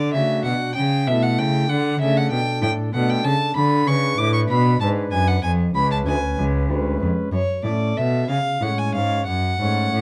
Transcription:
Already playing: cello D3, violin D5
0.13 cello C#3, pipe organ C#3 A3 D4 F#4, violin E5
0.45 cello B2, pipe organ B2, violin F#5
0.75 cello C#3, pipe organ C#3, violin G5
1.07 cello B2, pipe organ B2 A3 E4 A4, violin E5
1.23 violin F#5
1.39 cello C#3, pipe organ C#3, violin G5
1.69 cello D3, pipe organ D3, violin F#5
2.00 cello C#3, pipe organ C#3 A3 D4 A4, violin E5
2.17 violin F#5
2.31 cello B2, pipe organ B2, violin G5
2.62 cello A2, pipe organ A2, violin G5
2.93 cello B2, pipe organ B2 A3 D4 A4, violin F#5
3.09 violin G5
3.24 cello C#3, pipe organ C#3, violin A5
3.54 pipe organ D3, cello D3, violin B5
3.86 pipe organ C#3 D4 B4, cello C#3, violin C#6
4.18 cello A2, pipe organ A2, violin D6
4.33 violin C#6
4.49 pipe organ B2, cello B2, violin B5
4.79 pipe organ G#2 D4 B4, cello G#2, violin A5
5.12 cello F#2, pipe organ F#2, violin G#5
5.28 violin F#5
5.43 pipe organ F2, cello F2, violin G#5
5.74 pipe organ C#2 G#3 C#4 B4, cello C#2, violin B5
5.91 violin A5
6.06 cello D2, pipe organ D2, violin G#5
6.37 pipe organ C#2, cello C#2
6.69 cello D2, pipe organ D2 G#3 C#4 B4
7.00 cello F2, pipe organ F2
7.32 cello F#2, pipe organ F#2, violin C#5
7.64 cello A2, pipe organ A2 A3 C#4 A4, violin D5
7.96 cello B2, pipe organ B2, violin E5
8.28 pipe organ C#3, cello C#3, violin F5
8.61 cello A2, pipe organ A2 G#3 C#4 C#5, violin F#5
8.78 violin G#5
8.94 pipe organ G#2, cello G#2, violin F5
9.26 pipe organ F#2, cello F#2, violin F#5
9.60 pipe organ G#2 A3 C#4 C#5, cello G#2
9.93 cello A2, pipe organ A2

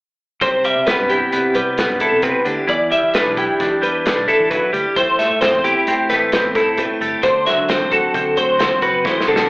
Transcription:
0.41 fingered electric bass C2, clean electric guitar C3 C5, kick, closed hi-hat
0.64 clean electric guitar G3 E5, closed hi-hat
0.76 fingered electric bass C3
0.87 clean electric guitar B3 B4, snare, closed hi-hat
0.99 fingered electric bass G2
1.09 clean electric guitar E4 G4, closed hi-hat
1.32 fingered electric bass C3, clean electric guitar B3, closed hi-hat
1.54 fingered electric bass C2, clean electric guitar G3 B4, closed hi-hat
1.78 clean electric guitar B3, snare, closed hi-hat
1.89 fingered electric bass G2
2.00 clean electric guitar E4 A4, kick, closed hi-hat
2.12 fingered electric bass C3
2.22 clean electric guitar C3 B4, kick, closed hi-hat
2.45 fingered electric bass D2, clean electric guitar D3 G4, closed hi-hat
2.67 fingered electric bass E2, clean electric guitar E3 D5, kick, closed hi-hat
2.91 clean electric guitar G3 E5, closed hi-hat
3.03 fingered electric bass E3
3.14 clean electric guitar D4 B4, snare, closed hi-hat
3.26 fingered electric bass B1
3.37 clean electric guitar E4 G4, kick, closed hi-hat
3.60 fingered electric bass E3, clean electric guitar D4, kick, snare, closed hi-hat
3.82 fingered electric bass E2, clean electric guitar G3 B4, closed hi-hat
4.06 clean electric guitar D4, snare, closed hi-hat
4.17 fingered electric bass B1
4.28 clean electric guitar E4 A4, kick, closed hi-hat
4.40 fingered electric bass E3
4.51 clean electric guitar F#3 B4, kick, closed hi-hat
4.73 fingered electric bass D2, clean electric guitar G3 G4, closed hi-hat
4.96 fingered electric bass A1, clean electric guitar A2 C5, kick, closed hi-hat
5.19 clean electric guitar A3 E5, snare, closed hi-hat
5.30 fingered electric bass A2
5.41 clean electric guitar C4 C5, snare, closed hi-hat
5.52 fingered electric bass E2
5.64 clean electric guitar E4 G4, closed hi-hat
5.87 fingered electric bass A2, clean electric guitar C4, closed hi-hat
6.10 fingered electric bass A1, clean electric guitar A3 B4, snare, closed hi-hat
6.32 clean electric guitar C4, snare, closed hi-hat
6.44 fingered electric bass E2
6.55 clean electric guitar E4 A4, kick, snare, closed hi-hat
6.66 fingered electric bass A2
6.77 clean electric guitar A2 B4, kick, closed hi-hat
7.00 fingered electric bass G1, clean electric guitar A3 G4, closed hi-hat
7.23 fingered electric bass D2, clean electric guitar D3 C5, kick, closed hi-hat
7.46 clean electric guitar F#3 E5, snare, closed hi-hat
7.57 fingered electric bass D3
7.69 clean electric guitar C4 C5, snare, closed hi-hat
7.80 fingered electric bass A1
7.91 clean electric guitar F#4 A4, kick, closed hi-hat
8.14 fingered electric bass D3, clean electric guitar C4, kick, closed hi-hat
8.37 fingered electric bass D2, clean electric guitar F#3 C5, closed hi-hat
8.59 clean electric guitar C4, snare, closed hi-hat
8.71 fingered electric bass A1
8.82 fingered electric bass F#1, clean electric guitar F#4 B4, kick, closed hi-hat
9.05 fingered electric bass A1, clean electric guitar E3 C5, kick, snare
9.21 snare
9.27 fingered electric bass B1, clean electric guitar D3 A4
9.36 snare

